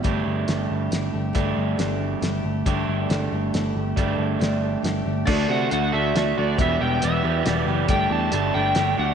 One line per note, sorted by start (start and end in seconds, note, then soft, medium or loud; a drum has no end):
0.03 0.22 G1 medium
0.03 0.46 G3 medium
0.03 0.48 A3 medium
0.03 0.49 D4 medium
0.03 0.48 G4 medium
0.03 kick loud
0.03 closed hi-hat medium
0.26 0.44 G1 medium
0.48 0.66 G1 medium
0.48 0.90 G3 medium
0.48 0.91 A3 medium
0.48 0.92 D4 medium
0.48 0.91 G4 medium
0.48 snare medium
0.48 closed hi-hat medium
0.70 0.88 G1 medium
0.91 1.09 G1 medium
0.91 1.13 G3 medium
0.91 1.12 A3 medium
0.91 1.12 D4 medium
0.91 1.11 G4 medium
0.91 snare medium
0.91 closed hi-hat medium
1.12 1.31 G1 medium
1.12 1.33 A3 soft
1.12 1.34 D4 soft
1.12 1.34 G4 soft
1.33 1.53 G1 medium
1.33 1.76 G3 medium
1.33 1.78 A3 medium
1.33 1.78 D4 medium
1.33 1.78 G4 medium
1.33 kick medium
1.33 closed hi-hat medium
1.57 1.74 G1 medium
1.77 2.14 G1 medium
1.77 2.20 G3 medium
1.77 2.22 A3 medium
1.77 2.23 D4 medium
1.77 2.23 G4 medium
1.77 snare medium
1.77 closed hi-hat medium
2.21 2.40 G1 medium
2.21 2.44 G3 medium
2.21 2.44 A3 medium
2.21 2.43 D4 medium
2.21 2.41 G4 medium
2.21 snare medium
2.21 closed hi-hat medium
2.42 2.62 G1 medium
2.42 2.65 A3 soft
2.42 2.65 D4 soft
2.42 2.65 G4 soft
2.65 2.84 G1 medium
2.65 3.07 G3 medium
2.65 3.09 A3 medium
2.65 3.10 D4 medium
2.65 3.09 G4 medium
2.65 kick loud
2.65 closed hi-hat medium
2.88 3.05 G1 medium
3.09 3.27 G1 medium
3.09 3.31 G3 medium
3.09 3.31 A3 medium
3.09 3.31 D4 medium
3.09 3.30 G4 medium
3.09 snare medium
3.09 closed hi-hat medium
3.31 3.49 G1 medium
3.31 3.53 A3 soft
3.31 3.53 D4 soft
3.31 3.53 G4 medium
3.53 3.71 G1 medium
3.53 3.75 G3 medium
3.53 3.75 A3 medium
3.53 3.76 D4 medium
3.53 3.74 G4 medium
3.53 snare medium
3.53 closed hi-hat medium
3.75 3.92 G1 medium
3.75 3.97 A3 soft
3.75 3.97 D4 soft
3.75 3.97 G4 soft
3.97 4.14 G1 medium
3.97 4.38 G3 medium
3.97 4.38 A3 medium
3.97 4.39 D4 medium
3.97 4.39 G4 medium
3.97 kick medium
3.97 closed hi-hat medium
4.18 4.36 G1 medium
4.39 4.75 G1 medium
4.39 4.62 G3 medium
4.39 4.62 A3 medium
4.39 4.61 D4 medium
4.39 4.60 G4 medium
4.39 snare medium
4.39 closed hi-hat medium
4.61 4.82 A3 soft
4.61 4.83 D4 soft
4.61 4.83 G4 medium
4.82 5.02 G1 medium
4.82 5.05 G3 medium
4.82 5.05 A3 medium
4.82 5.05 D4 medium
4.82 5.04 G4 medium
4.82 snare medium
4.82 closed hi-hat medium
5.05 5.23 G1 medium
5.05 5.25 A3 soft
5.05 5.26 D4 soft
5.05 5.27 G4 soft
5.25 5.46 D2 medium
5.25 5.68 D3 medium
5.25 5.69 A3 medium
5.25 5.69 D4 medium
5.25 6.12 F#4 medium
5.25 5.71 F#4 medium
5.25 6.13 A4 medium
5.25 5.47 D5 medium
5.25 kick loud
5.25 crash loud
5.30 6.14 D5 medium
5.49 5.67 C3 medium
5.49 5.71 A3 medium
5.49 5.72 D4 medium
5.49 5.72 F#4 medium
5.49 5.71 F#5 medium
5.69 5.90 D2 medium
5.69 6.13 D3 medium
5.69 6.13 A3 medium
5.69 6.14 D4 medium
5.69 6.15 F#4 medium
5.69 5.94 F#5 loud
5.69 closed hi-hat medium
5.92 6.12 D2 medium
5.92 6.15 D3 medium
5.92 6.15 A3 medium
5.92 6.16 D4 medium
5.92 6.16 F#4 loud
5.92 6.33 E5 medium
6.14 6.33 D2 medium
6.14 6.58 D3 medium
6.14 6.58 A3 medium
6.14 6.58 D4 medium
6.14 6.58 F#4 medium
6.14 6.59 F#4 medium
6.14 6.59 A4 soft
6.14 6.59 D5 medium
6.14 snare medium
6.14 closed hi-hat medium
6.38 6.55 D2 medium
6.38 6.58 A3 medium
6.38 6.58 D4 medium
6.38 6.57 F#4 medium
6.38 6.58 D5 medium
6.55 6.77 E1 medium
6.55 7.01 E2 medium
6.55 7.02 B2 medium
6.55 7.00 E3 medium
6.55 7.01 G3 medium
6.55 7.84 G4 medium
6.55 7.86 B4 medium
6.55 kick loud
6.55 closed hi-hat medium
6.59 7.01 B3 medium
6.59 7.03 G4 medium
6.59 7.87 E5 medium
6.59 6.82 E5 loud
6.81 6.99 E1 medium
6.81 7.00 E3 medium
6.81 7.02 G3 medium
6.81 7.02 B3 medium
6.81 7.03 G4 medium
6.81 7.03 G5 loud
7.01 7.20 E1 medium
7.01 7.23 E3 medium
7.01 7.23 G3 medium
7.01 7.22 B3 medium
7.01 7.22 G4 medium
7.01 7.50 E5 medium
7.01 closed hi-hat medium
7.23 7.42 E2 medium
7.23 7.68 E2 medium
7.23 7.68 B2 medium
7.23 7.43 E3 soft
7.23 7.44 G3 soft
7.23 7.45 B3 soft
7.23 7.45 G4 soft
7.44 7.63 E1 medium
7.44 7.67 E3 medium
7.44 7.67 G3 medium
7.44 7.67 B3 medium
7.44 7.65 G4 medium
7.44 snare medium
7.44 closed hi-hat medium
7.50 7.64 D5 medium
7.66 7.85 F#1 medium
7.66 7.89 E3 soft
7.66 7.88 G3 soft
7.66 7.89 B3 soft
7.66 7.89 G4 medium
7.85 8.07 G1 loud
7.85 8.31 G3 medium
7.85 9.14 G4 medium
7.85 9.14 A4 medium
7.85 kick loud
7.85 closed hi-hat medium
7.90 8.31 A3 medium
7.90 8.32 D4 medium
7.90 8.33 G4 medium
7.90 9.14 D5 medium
7.90 8.10 G5 medium
8.10 8.28 E2 medium
8.10 8.32 A3 medium
8.10 8.32 D4 medium
8.10 8.33 G4 medium
8.10 8.33 A5 medium
8.31 8.50 G1 loud
8.31 8.54 G3 medium
8.31 8.54 A3 medium
8.31 8.53 D4 medium
8.31 8.51 G4 medium
8.31 8.54 A5 medium
8.31 closed hi-hat medium
8.53 8.73 G1 medium
8.53 8.74 G3 medium
8.53 8.75 A3 soft
8.53 8.76 D4 soft
8.53 8.75 G4 medium
8.53 8.95 G5 loud
8.75 8.94 G1 medium
8.75 8.97 G3 medium
8.75 8.97 A3 medium
8.75 8.96 D4 medium
8.75 8.95 G4 medium
8.75 snare medium
8.75 closed hi-hat medium
8.96 9.14 D2 medium
8.96 9.14 A3 soft
8.96 9.14 D4 soft
8.96 9.14 G4 soft
8.96 9.14 F#5 medium